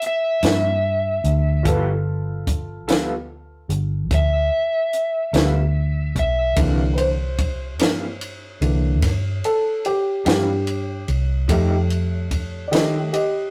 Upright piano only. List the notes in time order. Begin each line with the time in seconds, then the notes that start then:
Already playing: E4 A#4 D5
1.63 F4 A4 B4
6.56 D3 E3 A#3
6.94 B4 C5
8.61 D3 E3 A#3
9.45 A4
9.86 G4
10.27 G4
11.49 G3 A3
12.68 D#3 D5
12.72 G3 A3 G4 D#5
13.13 G4 D#5